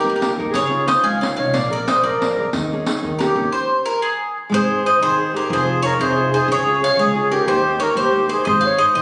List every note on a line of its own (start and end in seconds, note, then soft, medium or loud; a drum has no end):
0.00 0.37 A#3 medium
0.00 0.16 D#4 soft
0.00 0.16 G4 soft
0.00 0.32 G4 medium
0.00 0.16 A#4 medium
0.00 0.07 A#4 medium
0.05 0.27 D#2 medium
0.10 0.15 A#4 soft
0.16 0.22 A#4 medium
0.21 0.37 D#4 soft
0.21 0.37 G4 soft
0.21 0.37 A#4 medium
0.21 0.30 A#4 soft
0.21 riq medium
0.38 0.50 D#2 medium
0.38 0.51 D#4 soft
0.38 0.52 G4 soft
0.38 0.51 A#4 medium
0.50 0.87 C#2 loud
0.50 0.87 C#3 medium
0.50 0.83 G#4 medium
0.50 riq soft
0.55 0.86 C#5 medium
0.70 0.85 C#4 soft
0.70 0.85 D#4 soft
0.70 0.85 F4 soft
0.86 1.14 C#4 soft
0.86 1.14 D#4 soft
0.86 1.14 F4 soft
0.86 1.02 C5 medium
0.86 1.03 D#5 medium
0.86 riq medium
1.02 1.26 C#2 medium
1.02 1.36 G#3 medium
1.02 1.19 F5 medium
1.02 1.20 G#5 medium
1.20 1.36 C#4 soft
1.20 1.36 D#4 soft
1.20 1.38 F4 medium
1.20 1.28 C#5 medium
1.20 1.26 F5 medium
1.20 riq medium
1.36 1.48 C2 medium
1.36 1.51 C#4 soft
1.36 1.51 D#4 soft
1.36 1.51 F4 medium
1.36 1.53 C#5 medium
1.36 1.52 F5 medium
1.53 1.86 A#1 loud
1.53 1.86 A#3 medium
1.53 1.69 D5 medium
1.53 1.70 F5 medium
1.53 riq medium
1.70 1.85 G#4 soft
1.70 1.85 A#4 soft
1.70 1.86 A#4 medium
1.70 1.86 D5 medium
1.70 1.87 D5 medium
1.86 2.13 G#4 soft
1.86 2.13 A#4 soft
1.86 2.02 C5 medium
1.86 2.13 D5 soft
1.86 2.03 D#5 medium
1.86 riq medium
2.03 2.25 A#1 medium
2.03 2.37 F3 medium
2.03 2.49 A#4 medium
2.03 2.49 D5 medium
2.22 2.38 G#4 soft
2.22 2.38 A#4 soft
2.22 2.39 D5 medium
2.22 riq medium
2.37 2.47 D2 medium
2.37 2.51 G#4 soft
2.37 2.51 A#4 soft
2.37 2.51 D5 soft
2.53 2.85 D#2 medium
2.53 2.86 D#3 medium
2.53 riq medium
2.73 2.86 C#4 soft
2.73 2.86 D#4 soft
2.73 2.86 G#4 medium
2.86 3.00 C#4 soft
2.86 2.99 D#4 soft
2.86 3.00 G#4 medium
2.86 riq medium
3.03 3.24 D#2 medium
3.03 3.35 D#3 medium
3.19 3.33 C#4 soft
3.19 3.34 D#4 soft
3.19 3.49 G4 medium
3.19 3.35 G4 soft
3.19 3.52 A#4 medium
3.19 riq medium
3.35 3.46 D#2 medium
3.35 3.47 C#4 medium
3.35 3.48 D#4 soft
3.35 3.49 G4 soft
3.52 3.82 C5 medium
3.86 4.00 A#4 medium
4.02 4.36 G#4 medium
4.49 4.84 G#1 medium
4.49 4.82 G#3 medium
4.54 4.84 G#4 medium
4.54 4.83 C5 loud
4.65 4.82 D#4 soft
4.65 4.83 G#4 soft
4.65 4.83 C5 medium
4.83 5.10 D#4 soft
4.83 5.11 G#4 soft
4.83 5.10 C5 soft
4.83 5.00 C5 medium
4.83 5.00 D#5 medium
5.00 5.32 G#1 medium
5.00 5.33 D#3 medium
5.00 5.32 G#4 medium
5.00 5.32 C5 loud
5.17 5.32 D#4 medium
5.17 5.33 G#4 medium
5.17 5.33 C5 medium
5.33 5.46 D#4 medium
5.33 5.48 G4 medium
5.33 5.46 G#4 medium
5.33 5.50 A#4 medium
5.33 5.47 C5 medium
5.49 5.82 F1 loud
5.49 5.82 F3 medium
5.49 5.80 G#4 medium
5.49 5.82 C5 loud
5.66 5.81 D#4 medium
5.66 5.81 F4 soft
5.66 5.82 G#4 medium
5.82 6.09 D#4 soft
5.82 6.09 F4 medium
5.82 6.09 G#4 medium
5.82 5.99 A#4 medium
5.82 5.98 C#5 loud
5.99 6.31 F1 medium
5.99 6.31 C3 medium
5.99 6.30 G#4 medium
5.99 6.30 C5 loud
6.16 6.33 D#4 medium
6.16 6.32 F4 soft
6.16 6.33 G#4 medium
6.33 6.46 D#4 medium
6.33 6.46 F4 soft
6.33 6.48 G#4 medium
6.33 6.46 G#4 medium
6.33 6.48 C5 medium
6.48 6.80 C#2 medium
6.48 6.80 C#3 medium
6.48 6.80 G#4 loud
6.48 6.81 C#5 loud
6.66 6.79 C#4 soft
6.66 6.79 F4 soft
6.66 6.81 G#4 medium
6.80 7.07 C#4 medium
6.80 7.07 F4 soft
6.80 7.08 G#4 medium
6.80 6.97 C#5 medium
6.80 6.98 F5 loud
6.97 7.29 C#2 medium
6.97 7.30 G#3 medium
6.97 7.29 G#4 loud
6.97 7.29 C#5 medium
7.15 7.29 C#4 medium
7.15 7.30 F4 medium
7.15 7.31 G#4 medium
7.30 7.43 C#4 medium
7.30 7.44 F4 medium
7.30 7.43 G4 medium
7.30 7.44 G#4 medium
7.30 7.46 A#4 medium
7.45 7.79 D#2 medium
7.45 7.78 D#3 medium
7.45 7.76 G4 medium
7.45 7.79 C5 medium
7.63 7.77 A#3 soft
7.63 7.77 D#4 soft
7.63 7.78 G4 soft
7.78 7.93 A#3 soft
7.78 8.05 D#4 soft
7.78 8.06 G4 soft
7.78 7.94 C#5 medium
7.82 7.96 A#4 medium
7.95 8.28 D#2 medium
7.95 8.11 A#3 medium
7.95 8.27 C5 medium
7.99 8.28 G4 medium
8.12 8.27 A#3 soft
8.12 8.27 D#4 soft
8.12 8.28 G4 soft
8.28 8.42 A#3 medium
8.28 8.42 D#4 soft
8.28 8.42 G4 medium
8.28 8.44 C5 medium
8.33 8.46 G#4 medium
8.45 8.78 G#1 loud
8.45 8.78 G#3 medium
8.45 8.62 C5 loud
8.45 8.61 D#5 medium
8.61 8.77 D#4 soft
8.61 8.77 G#4 soft
8.61 8.78 C5 soft
8.61 8.78 F5 medium
8.65 8.79 C#5 medium
8.78 9.02 D#4 soft
8.78 9.02 G#4 soft
8.78 9.02 C5 soft
8.78 8.94 C5 medium
8.78 8.94 D#5 loud
8.93 9.02 G#1 medium
8.93 9.02 D#3 medium
8.93 9.02 C5 medium
8.93 9.02 D#5 loud